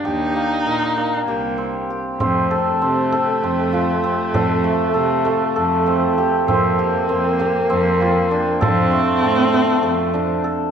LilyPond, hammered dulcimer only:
\new Staff \with { instrumentName = "Hammered dulcimer" } { \time 7/8 \key c \dorian \tempo 4 = 98 g'8 bes8 bes'8 bes8 g'8 c'8 g'8 | \key f \major c'8 a'8 c'8 a'8 c'8 f'8 c'8 | a'8 a8 a'8 a8 a'8 c'8 g'8 | c'8 g'8 c'8 g'8 c'8 f'8 d'8 |
a'8 a8 a'8 a8 a'8 d'8 a'8 | }